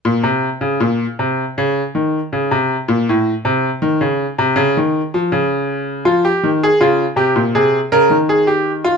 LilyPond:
\new Staff \with { instrumentName = "Grand piano" } { \clef bass \time 4/4 \key f \phrygian \tempo 4 = 80 << { bes,16 c8 des16 bes,8 c8 des8 ees8 des16 c8 bes,16 | a,8 c8 ees16 des8 c16 des16 ees8 f16 des4 | f'16 g'8 aes'16 f'8 g'8 aes'8 bes'8 aes'16 g'8 f'16 | } \\ { r1 | r1 | f8 ees8 des8 c16 bes,16 c8 des16 ees4~ ees16 | } >> }